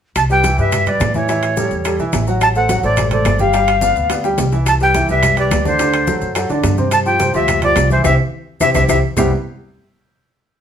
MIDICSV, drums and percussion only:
0, 0, Header, 1, 2, 480
1, 0, Start_track
1, 0, Key_signature, 0, "major"
1, 0, Tempo, 281690
1, 269, Time_signature, 4, 2, 24, 8
1, 18073, End_track
2, 0, Start_track
2, 0, Title_t, "Drums"
2, 269, Note_on_c, 9, 65, 91
2, 269, Note_on_c, 9, 70, 58
2, 270, Note_on_c, 9, 60, 68
2, 271, Note_on_c, 9, 63, 34
2, 272, Note_on_c, 9, 75, 64
2, 439, Note_off_c, 9, 65, 0
2, 439, Note_off_c, 9, 70, 0
2, 440, Note_off_c, 9, 60, 0
2, 441, Note_off_c, 9, 63, 0
2, 443, Note_off_c, 9, 75, 0
2, 507, Note_on_c, 9, 70, 27
2, 509, Note_on_c, 9, 60, 33
2, 513, Note_on_c, 9, 63, 34
2, 678, Note_off_c, 9, 70, 0
2, 679, Note_off_c, 9, 60, 0
2, 683, Note_off_c, 9, 63, 0
2, 747, Note_on_c, 9, 70, 75
2, 748, Note_on_c, 9, 63, 83
2, 751, Note_on_c, 9, 60, 59
2, 754, Note_on_c, 9, 65, 65
2, 754, Note_on_c, 9, 66, 56
2, 918, Note_off_c, 9, 63, 0
2, 918, Note_off_c, 9, 70, 0
2, 922, Note_off_c, 9, 60, 0
2, 925, Note_off_c, 9, 65, 0
2, 925, Note_off_c, 9, 66, 0
2, 989, Note_on_c, 9, 63, 31
2, 992, Note_on_c, 9, 70, 28
2, 1160, Note_off_c, 9, 63, 0
2, 1163, Note_off_c, 9, 70, 0
2, 1225, Note_on_c, 9, 70, 65
2, 1232, Note_on_c, 9, 75, 63
2, 1235, Note_on_c, 9, 65, 90
2, 1237, Note_on_c, 9, 60, 68
2, 1238, Note_on_c, 9, 63, 33
2, 1238, Note_on_c, 9, 64, 70
2, 1395, Note_off_c, 9, 70, 0
2, 1403, Note_off_c, 9, 75, 0
2, 1405, Note_off_c, 9, 65, 0
2, 1408, Note_off_c, 9, 60, 0
2, 1408, Note_off_c, 9, 63, 0
2, 1408, Note_off_c, 9, 64, 0
2, 1471, Note_on_c, 9, 70, 27
2, 1473, Note_on_c, 9, 63, 29
2, 1473, Note_on_c, 9, 64, 60
2, 1482, Note_on_c, 9, 60, 34
2, 1484, Note_on_c, 9, 65, 66
2, 1641, Note_off_c, 9, 70, 0
2, 1644, Note_off_c, 9, 63, 0
2, 1644, Note_off_c, 9, 64, 0
2, 1652, Note_off_c, 9, 60, 0
2, 1654, Note_off_c, 9, 65, 0
2, 1707, Note_on_c, 9, 63, 86
2, 1707, Note_on_c, 9, 70, 62
2, 1718, Note_on_c, 9, 60, 68
2, 1718, Note_on_c, 9, 61, 85
2, 1719, Note_on_c, 9, 75, 65
2, 1721, Note_on_c, 9, 65, 84
2, 1721, Note_on_c, 9, 66, 86
2, 1877, Note_off_c, 9, 70, 0
2, 1878, Note_off_c, 9, 63, 0
2, 1888, Note_off_c, 9, 60, 0
2, 1888, Note_off_c, 9, 61, 0
2, 1890, Note_off_c, 9, 75, 0
2, 1892, Note_off_c, 9, 65, 0
2, 1892, Note_off_c, 9, 66, 0
2, 1947, Note_on_c, 9, 63, 78
2, 1947, Note_on_c, 9, 70, 28
2, 1958, Note_on_c, 9, 60, 36
2, 2117, Note_off_c, 9, 63, 0
2, 2117, Note_off_c, 9, 70, 0
2, 2128, Note_off_c, 9, 60, 0
2, 2188, Note_on_c, 9, 70, 60
2, 2193, Note_on_c, 9, 63, 33
2, 2197, Note_on_c, 9, 60, 69
2, 2202, Note_on_c, 9, 65, 60
2, 2359, Note_off_c, 9, 70, 0
2, 2363, Note_off_c, 9, 63, 0
2, 2368, Note_off_c, 9, 60, 0
2, 2372, Note_off_c, 9, 65, 0
2, 2432, Note_on_c, 9, 65, 85
2, 2433, Note_on_c, 9, 63, 32
2, 2435, Note_on_c, 9, 70, 27
2, 2437, Note_on_c, 9, 75, 68
2, 2441, Note_on_c, 9, 60, 33
2, 2602, Note_off_c, 9, 65, 0
2, 2603, Note_off_c, 9, 63, 0
2, 2605, Note_off_c, 9, 70, 0
2, 2608, Note_off_c, 9, 75, 0
2, 2612, Note_off_c, 9, 60, 0
2, 2671, Note_on_c, 9, 70, 73
2, 2678, Note_on_c, 9, 60, 57
2, 2678, Note_on_c, 9, 66, 58
2, 2679, Note_on_c, 9, 63, 83
2, 2842, Note_off_c, 9, 70, 0
2, 2848, Note_off_c, 9, 60, 0
2, 2848, Note_off_c, 9, 66, 0
2, 2850, Note_off_c, 9, 63, 0
2, 2912, Note_on_c, 9, 70, 29
2, 2917, Note_on_c, 9, 63, 33
2, 3083, Note_off_c, 9, 70, 0
2, 3088, Note_off_c, 9, 63, 0
2, 3148, Note_on_c, 9, 70, 64
2, 3154, Note_on_c, 9, 65, 92
2, 3156, Note_on_c, 9, 63, 33
2, 3158, Note_on_c, 9, 75, 64
2, 3162, Note_on_c, 9, 60, 70
2, 3319, Note_off_c, 9, 70, 0
2, 3325, Note_off_c, 9, 65, 0
2, 3327, Note_off_c, 9, 63, 0
2, 3328, Note_off_c, 9, 75, 0
2, 3333, Note_off_c, 9, 60, 0
2, 3393, Note_on_c, 9, 70, 26
2, 3394, Note_on_c, 9, 63, 31
2, 3404, Note_on_c, 9, 60, 35
2, 3563, Note_off_c, 9, 70, 0
2, 3564, Note_off_c, 9, 63, 0
2, 3575, Note_off_c, 9, 60, 0
2, 3623, Note_on_c, 9, 70, 67
2, 3626, Note_on_c, 9, 63, 76
2, 3631, Note_on_c, 9, 60, 73
2, 3631, Note_on_c, 9, 61, 80
2, 3632, Note_on_c, 9, 65, 69
2, 3632, Note_on_c, 9, 66, 76
2, 3793, Note_off_c, 9, 70, 0
2, 3797, Note_off_c, 9, 63, 0
2, 3801, Note_off_c, 9, 60, 0
2, 3801, Note_off_c, 9, 61, 0
2, 3802, Note_off_c, 9, 65, 0
2, 3802, Note_off_c, 9, 66, 0
2, 3870, Note_on_c, 9, 70, 29
2, 3876, Note_on_c, 9, 60, 34
2, 4040, Note_off_c, 9, 70, 0
2, 4047, Note_off_c, 9, 60, 0
2, 4106, Note_on_c, 9, 70, 59
2, 4111, Note_on_c, 9, 65, 84
2, 4112, Note_on_c, 9, 63, 34
2, 4116, Note_on_c, 9, 60, 69
2, 4117, Note_on_c, 9, 75, 66
2, 4277, Note_off_c, 9, 70, 0
2, 4281, Note_off_c, 9, 65, 0
2, 4283, Note_off_c, 9, 63, 0
2, 4287, Note_off_c, 9, 60, 0
2, 4287, Note_off_c, 9, 75, 0
2, 4347, Note_on_c, 9, 70, 26
2, 4352, Note_on_c, 9, 60, 37
2, 4358, Note_on_c, 9, 63, 35
2, 4517, Note_off_c, 9, 70, 0
2, 4522, Note_off_c, 9, 60, 0
2, 4528, Note_off_c, 9, 63, 0
2, 4584, Note_on_c, 9, 70, 74
2, 4587, Note_on_c, 9, 63, 79
2, 4587, Note_on_c, 9, 65, 67
2, 4587, Note_on_c, 9, 66, 60
2, 4593, Note_on_c, 9, 60, 61
2, 4755, Note_off_c, 9, 70, 0
2, 4758, Note_off_c, 9, 63, 0
2, 4758, Note_off_c, 9, 65, 0
2, 4758, Note_off_c, 9, 66, 0
2, 4763, Note_off_c, 9, 60, 0
2, 4824, Note_on_c, 9, 63, 34
2, 4824, Note_on_c, 9, 70, 29
2, 4995, Note_off_c, 9, 63, 0
2, 4995, Note_off_c, 9, 70, 0
2, 5056, Note_on_c, 9, 70, 62
2, 5062, Note_on_c, 9, 65, 93
2, 5066, Note_on_c, 9, 63, 32
2, 5066, Note_on_c, 9, 64, 71
2, 5070, Note_on_c, 9, 75, 65
2, 5080, Note_on_c, 9, 60, 67
2, 5227, Note_off_c, 9, 70, 0
2, 5232, Note_off_c, 9, 65, 0
2, 5236, Note_off_c, 9, 63, 0
2, 5236, Note_off_c, 9, 64, 0
2, 5240, Note_off_c, 9, 75, 0
2, 5251, Note_off_c, 9, 60, 0
2, 5298, Note_on_c, 9, 63, 34
2, 5298, Note_on_c, 9, 64, 63
2, 5300, Note_on_c, 9, 65, 74
2, 5301, Note_on_c, 9, 70, 27
2, 5319, Note_on_c, 9, 60, 35
2, 5468, Note_off_c, 9, 63, 0
2, 5468, Note_off_c, 9, 64, 0
2, 5471, Note_off_c, 9, 65, 0
2, 5471, Note_off_c, 9, 70, 0
2, 5489, Note_off_c, 9, 60, 0
2, 5536, Note_on_c, 9, 63, 80
2, 5541, Note_on_c, 9, 65, 84
2, 5541, Note_on_c, 9, 66, 77
2, 5541, Note_on_c, 9, 70, 64
2, 5549, Note_on_c, 9, 75, 61
2, 5552, Note_on_c, 9, 60, 70
2, 5552, Note_on_c, 9, 61, 81
2, 5707, Note_off_c, 9, 63, 0
2, 5711, Note_off_c, 9, 65, 0
2, 5711, Note_off_c, 9, 66, 0
2, 5711, Note_off_c, 9, 70, 0
2, 5719, Note_off_c, 9, 75, 0
2, 5722, Note_off_c, 9, 60, 0
2, 5722, Note_off_c, 9, 61, 0
2, 5776, Note_on_c, 9, 70, 28
2, 5781, Note_on_c, 9, 63, 77
2, 5796, Note_on_c, 9, 60, 33
2, 5946, Note_off_c, 9, 70, 0
2, 5951, Note_off_c, 9, 63, 0
2, 5967, Note_off_c, 9, 60, 0
2, 6020, Note_on_c, 9, 70, 62
2, 6021, Note_on_c, 9, 63, 33
2, 6027, Note_on_c, 9, 65, 68
2, 6036, Note_on_c, 9, 60, 72
2, 6191, Note_off_c, 9, 63, 0
2, 6191, Note_off_c, 9, 70, 0
2, 6197, Note_off_c, 9, 65, 0
2, 6206, Note_off_c, 9, 60, 0
2, 6263, Note_on_c, 9, 63, 35
2, 6263, Note_on_c, 9, 70, 27
2, 6270, Note_on_c, 9, 65, 95
2, 6271, Note_on_c, 9, 75, 69
2, 6272, Note_on_c, 9, 60, 34
2, 6433, Note_off_c, 9, 70, 0
2, 6434, Note_off_c, 9, 63, 0
2, 6440, Note_off_c, 9, 65, 0
2, 6442, Note_off_c, 9, 75, 0
2, 6443, Note_off_c, 9, 60, 0
2, 6498, Note_on_c, 9, 63, 78
2, 6504, Note_on_c, 9, 66, 55
2, 6506, Note_on_c, 9, 70, 73
2, 6511, Note_on_c, 9, 60, 55
2, 6668, Note_off_c, 9, 63, 0
2, 6674, Note_off_c, 9, 66, 0
2, 6676, Note_off_c, 9, 70, 0
2, 6681, Note_off_c, 9, 60, 0
2, 6742, Note_on_c, 9, 63, 33
2, 6745, Note_on_c, 9, 70, 28
2, 6913, Note_off_c, 9, 63, 0
2, 6915, Note_off_c, 9, 70, 0
2, 6974, Note_on_c, 9, 63, 31
2, 6981, Note_on_c, 9, 65, 88
2, 6983, Note_on_c, 9, 60, 94
2, 6992, Note_on_c, 9, 70, 61
2, 6994, Note_on_c, 9, 75, 57
2, 7145, Note_off_c, 9, 63, 0
2, 7151, Note_off_c, 9, 65, 0
2, 7154, Note_off_c, 9, 60, 0
2, 7163, Note_off_c, 9, 70, 0
2, 7164, Note_off_c, 9, 75, 0
2, 7226, Note_on_c, 9, 60, 78
2, 7226, Note_on_c, 9, 63, 33
2, 7231, Note_on_c, 9, 70, 25
2, 7396, Note_off_c, 9, 60, 0
2, 7397, Note_off_c, 9, 63, 0
2, 7401, Note_off_c, 9, 70, 0
2, 7459, Note_on_c, 9, 63, 78
2, 7460, Note_on_c, 9, 61, 82
2, 7464, Note_on_c, 9, 70, 66
2, 7470, Note_on_c, 9, 65, 69
2, 7470, Note_on_c, 9, 66, 74
2, 7629, Note_off_c, 9, 63, 0
2, 7630, Note_off_c, 9, 61, 0
2, 7634, Note_off_c, 9, 70, 0
2, 7640, Note_off_c, 9, 65, 0
2, 7640, Note_off_c, 9, 66, 0
2, 7704, Note_on_c, 9, 70, 28
2, 7709, Note_on_c, 9, 61, 82
2, 7874, Note_off_c, 9, 70, 0
2, 7879, Note_off_c, 9, 61, 0
2, 7943, Note_on_c, 9, 70, 61
2, 7945, Note_on_c, 9, 60, 70
2, 7950, Note_on_c, 9, 63, 32
2, 7950, Note_on_c, 9, 65, 86
2, 7952, Note_on_c, 9, 75, 65
2, 8113, Note_off_c, 9, 70, 0
2, 8116, Note_off_c, 9, 60, 0
2, 8120, Note_off_c, 9, 63, 0
2, 8120, Note_off_c, 9, 65, 0
2, 8122, Note_off_c, 9, 75, 0
2, 8184, Note_on_c, 9, 70, 26
2, 8188, Note_on_c, 9, 60, 34
2, 8195, Note_on_c, 9, 63, 33
2, 8355, Note_off_c, 9, 70, 0
2, 8359, Note_off_c, 9, 60, 0
2, 8365, Note_off_c, 9, 63, 0
2, 8425, Note_on_c, 9, 65, 68
2, 8425, Note_on_c, 9, 66, 55
2, 8426, Note_on_c, 9, 63, 85
2, 8428, Note_on_c, 9, 70, 68
2, 8434, Note_on_c, 9, 60, 63
2, 8595, Note_off_c, 9, 65, 0
2, 8595, Note_off_c, 9, 66, 0
2, 8597, Note_off_c, 9, 63, 0
2, 8598, Note_off_c, 9, 70, 0
2, 8605, Note_off_c, 9, 60, 0
2, 8667, Note_on_c, 9, 70, 27
2, 8676, Note_on_c, 9, 63, 32
2, 8837, Note_off_c, 9, 70, 0
2, 8846, Note_off_c, 9, 63, 0
2, 8906, Note_on_c, 9, 65, 95
2, 8913, Note_on_c, 9, 70, 65
2, 8914, Note_on_c, 9, 60, 66
2, 8916, Note_on_c, 9, 63, 33
2, 8916, Note_on_c, 9, 64, 78
2, 8916, Note_on_c, 9, 75, 63
2, 9076, Note_off_c, 9, 65, 0
2, 9083, Note_off_c, 9, 70, 0
2, 9085, Note_off_c, 9, 60, 0
2, 9086, Note_off_c, 9, 75, 0
2, 9087, Note_off_c, 9, 63, 0
2, 9087, Note_off_c, 9, 64, 0
2, 9152, Note_on_c, 9, 60, 34
2, 9152, Note_on_c, 9, 65, 69
2, 9152, Note_on_c, 9, 70, 26
2, 9153, Note_on_c, 9, 63, 33
2, 9322, Note_off_c, 9, 60, 0
2, 9322, Note_off_c, 9, 65, 0
2, 9323, Note_off_c, 9, 63, 0
2, 9323, Note_off_c, 9, 70, 0
2, 9387, Note_on_c, 9, 63, 80
2, 9391, Note_on_c, 9, 70, 68
2, 9394, Note_on_c, 9, 75, 62
2, 9395, Note_on_c, 9, 65, 90
2, 9395, Note_on_c, 9, 66, 76
2, 9396, Note_on_c, 9, 60, 71
2, 9396, Note_on_c, 9, 61, 82
2, 9557, Note_off_c, 9, 63, 0
2, 9562, Note_off_c, 9, 70, 0
2, 9565, Note_off_c, 9, 75, 0
2, 9566, Note_off_c, 9, 65, 0
2, 9566, Note_off_c, 9, 66, 0
2, 9567, Note_off_c, 9, 60, 0
2, 9567, Note_off_c, 9, 61, 0
2, 9633, Note_on_c, 9, 60, 34
2, 9634, Note_on_c, 9, 63, 77
2, 9639, Note_on_c, 9, 70, 28
2, 9804, Note_off_c, 9, 60, 0
2, 9804, Note_off_c, 9, 63, 0
2, 9809, Note_off_c, 9, 70, 0
2, 9868, Note_on_c, 9, 70, 65
2, 9871, Note_on_c, 9, 60, 70
2, 9873, Note_on_c, 9, 65, 64
2, 9879, Note_on_c, 9, 63, 35
2, 10038, Note_off_c, 9, 70, 0
2, 10041, Note_off_c, 9, 60, 0
2, 10044, Note_off_c, 9, 65, 0
2, 10049, Note_off_c, 9, 63, 0
2, 10110, Note_on_c, 9, 75, 68
2, 10112, Note_on_c, 9, 60, 36
2, 10112, Note_on_c, 9, 70, 27
2, 10115, Note_on_c, 9, 65, 95
2, 10120, Note_on_c, 9, 63, 35
2, 10281, Note_off_c, 9, 75, 0
2, 10282, Note_off_c, 9, 60, 0
2, 10282, Note_off_c, 9, 70, 0
2, 10285, Note_off_c, 9, 65, 0
2, 10290, Note_off_c, 9, 63, 0
2, 10347, Note_on_c, 9, 70, 68
2, 10351, Note_on_c, 9, 63, 83
2, 10354, Note_on_c, 9, 60, 60
2, 10355, Note_on_c, 9, 66, 56
2, 10517, Note_off_c, 9, 70, 0
2, 10522, Note_off_c, 9, 63, 0
2, 10524, Note_off_c, 9, 60, 0
2, 10525, Note_off_c, 9, 66, 0
2, 10585, Note_on_c, 9, 70, 29
2, 10595, Note_on_c, 9, 63, 32
2, 10756, Note_off_c, 9, 70, 0
2, 10765, Note_off_c, 9, 63, 0
2, 10824, Note_on_c, 9, 65, 85
2, 10828, Note_on_c, 9, 70, 64
2, 10830, Note_on_c, 9, 75, 61
2, 10837, Note_on_c, 9, 60, 71
2, 10838, Note_on_c, 9, 63, 31
2, 10995, Note_off_c, 9, 65, 0
2, 10998, Note_off_c, 9, 70, 0
2, 11000, Note_off_c, 9, 75, 0
2, 11008, Note_off_c, 9, 60, 0
2, 11009, Note_off_c, 9, 63, 0
2, 11065, Note_on_c, 9, 70, 28
2, 11070, Note_on_c, 9, 63, 33
2, 11076, Note_on_c, 9, 60, 34
2, 11236, Note_off_c, 9, 70, 0
2, 11240, Note_off_c, 9, 63, 0
2, 11246, Note_off_c, 9, 60, 0
2, 11306, Note_on_c, 9, 65, 71
2, 11306, Note_on_c, 9, 66, 82
2, 11308, Note_on_c, 9, 60, 71
2, 11308, Note_on_c, 9, 61, 78
2, 11313, Note_on_c, 9, 70, 67
2, 11320, Note_on_c, 9, 63, 80
2, 11476, Note_off_c, 9, 65, 0
2, 11476, Note_off_c, 9, 66, 0
2, 11478, Note_off_c, 9, 60, 0
2, 11478, Note_off_c, 9, 61, 0
2, 11483, Note_off_c, 9, 70, 0
2, 11490, Note_off_c, 9, 63, 0
2, 11544, Note_on_c, 9, 70, 28
2, 11553, Note_on_c, 9, 63, 68
2, 11554, Note_on_c, 9, 60, 32
2, 11714, Note_off_c, 9, 70, 0
2, 11724, Note_off_c, 9, 60, 0
2, 11724, Note_off_c, 9, 63, 0
2, 11781, Note_on_c, 9, 65, 87
2, 11781, Note_on_c, 9, 70, 65
2, 11790, Note_on_c, 9, 75, 65
2, 11791, Note_on_c, 9, 60, 66
2, 11792, Note_on_c, 9, 63, 37
2, 11951, Note_off_c, 9, 65, 0
2, 11951, Note_off_c, 9, 70, 0
2, 11961, Note_off_c, 9, 60, 0
2, 11961, Note_off_c, 9, 75, 0
2, 11963, Note_off_c, 9, 63, 0
2, 12021, Note_on_c, 9, 63, 33
2, 12026, Note_on_c, 9, 70, 25
2, 12027, Note_on_c, 9, 60, 37
2, 12192, Note_off_c, 9, 63, 0
2, 12197, Note_off_c, 9, 60, 0
2, 12197, Note_off_c, 9, 70, 0
2, 12263, Note_on_c, 9, 63, 85
2, 12264, Note_on_c, 9, 60, 65
2, 12266, Note_on_c, 9, 70, 66
2, 12268, Note_on_c, 9, 65, 66
2, 12268, Note_on_c, 9, 66, 55
2, 12433, Note_off_c, 9, 63, 0
2, 12434, Note_off_c, 9, 60, 0
2, 12436, Note_off_c, 9, 70, 0
2, 12438, Note_off_c, 9, 65, 0
2, 12438, Note_off_c, 9, 66, 0
2, 12501, Note_on_c, 9, 63, 35
2, 12505, Note_on_c, 9, 70, 29
2, 12672, Note_off_c, 9, 63, 0
2, 12675, Note_off_c, 9, 70, 0
2, 12744, Note_on_c, 9, 70, 63
2, 12747, Note_on_c, 9, 65, 96
2, 12750, Note_on_c, 9, 63, 34
2, 12750, Note_on_c, 9, 64, 74
2, 12753, Note_on_c, 9, 75, 61
2, 12757, Note_on_c, 9, 60, 69
2, 12914, Note_off_c, 9, 70, 0
2, 12918, Note_off_c, 9, 65, 0
2, 12920, Note_off_c, 9, 63, 0
2, 12920, Note_off_c, 9, 64, 0
2, 12924, Note_off_c, 9, 75, 0
2, 12927, Note_off_c, 9, 60, 0
2, 12984, Note_on_c, 9, 65, 70
2, 12987, Note_on_c, 9, 70, 27
2, 12995, Note_on_c, 9, 63, 32
2, 12995, Note_on_c, 9, 64, 65
2, 12996, Note_on_c, 9, 60, 34
2, 13155, Note_off_c, 9, 65, 0
2, 13158, Note_off_c, 9, 70, 0
2, 13166, Note_off_c, 9, 60, 0
2, 13166, Note_off_c, 9, 63, 0
2, 13166, Note_off_c, 9, 64, 0
2, 13218, Note_on_c, 9, 65, 94
2, 13218, Note_on_c, 9, 66, 81
2, 13228, Note_on_c, 9, 75, 62
2, 13229, Note_on_c, 9, 63, 80
2, 13231, Note_on_c, 9, 70, 66
2, 13236, Note_on_c, 9, 60, 68
2, 13236, Note_on_c, 9, 61, 87
2, 13389, Note_off_c, 9, 65, 0
2, 13389, Note_off_c, 9, 66, 0
2, 13398, Note_off_c, 9, 75, 0
2, 13399, Note_off_c, 9, 63, 0
2, 13401, Note_off_c, 9, 70, 0
2, 13406, Note_off_c, 9, 60, 0
2, 13406, Note_off_c, 9, 61, 0
2, 13466, Note_on_c, 9, 63, 74
2, 13473, Note_on_c, 9, 70, 27
2, 13475, Note_on_c, 9, 60, 33
2, 13637, Note_off_c, 9, 63, 0
2, 13643, Note_off_c, 9, 70, 0
2, 13646, Note_off_c, 9, 60, 0
2, 13701, Note_on_c, 9, 65, 92
2, 13706, Note_on_c, 9, 63, 96
2, 13711, Note_on_c, 9, 70, 83
2, 13712, Note_on_c, 9, 60, 91
2, 13714, Note_on_c, 9, 75, 99
2, 13871, Note_off_c, 9, 65, 0
2, 13876, Note_off_c, 9, 63, 0
2, 13882, Note_off_c, 9, 60, 0
2, 13882, Note_off_c, 9, 70, 0
2, 13884, Note_off_c, 9, 75, 0
2, 14663, Note_on_c, 9, 63, 89
2, 14664, Note_on_c, 9, 70, 89
2, 14668, Note_on_c, 9, 65, 95
2, 14670, Note_on_c, 9, 60, 100
2, 14672, Note_on_c, 9, 75, 84
2, 14834, Note_off_c, 9, 63, 0
2, 14834, Note_off_c, 9, 70, 0
2, 14838, Note_off_c, 9, 65, 0
2, 14841, Note_off_c, 9, 60, 0
2, 14843, Note_off_c, 9, 75, 0
2, 14901, Note_on_c, 9, 63, 93
2, 14904, Note_on_c, 9, 70, 86
2, 14905, Note_on_c, 9, 60, 91
2, 14912, Note_on_c, 9, 75, 87
2, 14913, Note_on_c, 9, 65, 96
2, 15071, Note_off_c, 9, 63, 0
2, 15075, Note_off_c, 9, 60, 0
2, 15075, Note_off_c, 9, 70, 0
2, 15083, Note_off_c, 9, 65, 0
2, 15083, Note_off_c, 9, 75, 0
2, 15139, Note_on_c, 9, 63, 100
2, 15145, Note_on_c, 9, 70, 88
2, 15152, Note_on_c, 9, 65, 89
2, 15154, Note_on_c, 9, 60, 100
2, 15157, Note_on_c, 9, 75, 94
2, 15309, Note_off_c, 9, 63, 0
2, 15316, Note_off_c, 9, 70, 0
2, 15323, Note_off_c, 9, 65, 0
2, 15324, Note_off_c, 9, 60, 0
2, 15327, Note_off_c, 9, 75, 0
2, 15619, Note_on_c, 9, 64, 98
2, 15621, Note_on_c, 9, 61, 97
2, 15626, Note_on_c, 9, 70, 88
2, 15632, Note_on_c, 9, 66, 93
2, 15638, Note_on_c, 9, 75, 96
2, 15790, Note_off_c, 9, 64, 0
2, 15791, Note_off_c, 9, 61, 0
2, 15796, Note_off_c, 9, 70, 0
2, 15803, Note_off_c, 9, 66, 0
2, 15809, Note_off_c, 9, 75, 0
2, 18073, End_track
0, 0, End_of_file